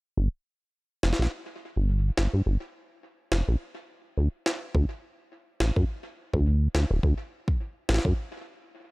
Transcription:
0.17 acid bass G1
1.03 acid bass F1, snare
1.13 snare
1.19 acid bass A#1, snare
1.76 acid bass G1
2.17 acid bass G1, snare
2.34 acid bass G2
2.46 acid bass G1
3.32 acid bass F1, snare
3.48 acid bass A#1
4.18 acid bass D2
4.46 snare
4.75 acid bass D2, kick
5.60 acid bass A1, snare
5.76 acid bass F#2, kick
6.34 acid bass D2, kick
6.75 acid bass D2, snare
6.91 acid bass D1
7.03 acid bass D2, kick
7.48 kick
7.89 acid bass A1, snare
7.94 snare
7.98 snare
8.05 acid bass F#2, kick

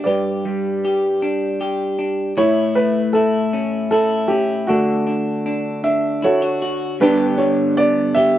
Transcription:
0.04 clean electric guitar G2 G4, felt piano B4 D5
0.45 clean electric guitar G3
0.85 clean electric guitar G4
1.22 clean electric guitar D4
1.61 clean electric guitar G4
1.99 clean electric guitar D4
2.37 clean electric guitar A2 E4, felt piano E4 C#5
2.75 clean electric guitar A3, felt piano B4
3.13 clean electric guitar E4, felt piano A4
3.53 clean electric guitar C#4
3.91 clean electric guitar E4, felt piano A4
4.28 clean electric guitar C#4, felt piano G4
4.67 clean electric guitar D3 D4, felt piano A3 F#4
5.07 clean electric guitar D4
5.46 clean electric guitar D4
5.84 clean electric guitar D4, felt piano E5
6.22 clean electric guitar E4, felt piano F#4 A4 C#5
6.42 clean electric guitar F#4
6.62 clean electric guitar F#4
7.00 clean electric guitar G2 D3 B3 D4 G4, felt piano D4 G4 B4
7.38 clean electric guitar D3, felt piano C#5
7.77 clean electric guitar B3, felt piano D5
8.15 clean electric guitar G4, felt piano E5

